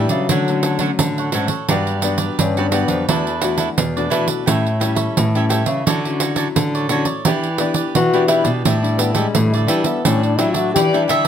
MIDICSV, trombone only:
0, 0, Header, 1, 2, 480
1, 0, Start_track
1, 0, Key_signature, 2, "major"
1, 0, Tempo, 697674
1, 205, Time_signature, 4, 2, 24, 8
1, 7760, End_track
2, 0, Start_track
2, 0, Title_t, "Trombone"
2, 0, Program_c, 0, 57
2, 0, Note_on_c, 0, 55, 81
2, 63, Note_on_c, 0, 54, 85
2, 73, Note_off_c, 0, 55, 0
2, 791, Note_off_c, 0, 54, 0
2, 1643, Note_on_c, 0, 61, 83
2, 1864, Note_off_c, 0, 61, 0
2, 1878, Note_on_c, 0, 59, 93
2, 2101, Note_off_c, 0, 59, 0
2, 5473, Note_on_c, 0, 66, 110
2, 5694, Note_off_c, 0, 66, 0
2, 5698, Note_on_c, 0, 64, 107
2, 5848, Note_off_c, 0, 64, 0
2, 6176, Note_on_c, 0, 59, 90
2, 6286, Note_on_c, 0, 56, 95
2, 6296, Note_off_c, 0, 59, 0
2, 6430, Note_on_c, 0, 57, 96
2, 6440, Note_off_c, 0, 56, 0
2, 6562, Note_on_c, 0, 50, 68
2, 6572, Note_off_c, 0, 57, 0
2, 6666, Note_on_c, 0, 55, 92
2, 6677, Note_off_c, 0, 50, 0
2, 6771, Note_on_c, 0, 59, 83
2, 6781, Note_off_c, 0, 55, 0
2, 6910, Note_on_c, 0, 61, 89
2, 6921, Note_off_c, 0, 59, 0
2, 7039, Note_on_c, 0, 62, 90
2, 7049, Note_off_c, 0, 61, 0
2, 7143, Note_on_c, 0, 64, 92
2, 7153, Note_off_c, 0, 62, 0
2, 7252, Note_on_c, 0, 66, 94
2, 7262, Note_off_c, 0, 64, 0
2, 7386, Note_off_c, 0, 66, 0
2, 7390, Note_on_c, 0, 67, 106
2, 7538, Note_off_c, 0, 67, 0
2, 7760, End_track
0, 0, End_of_file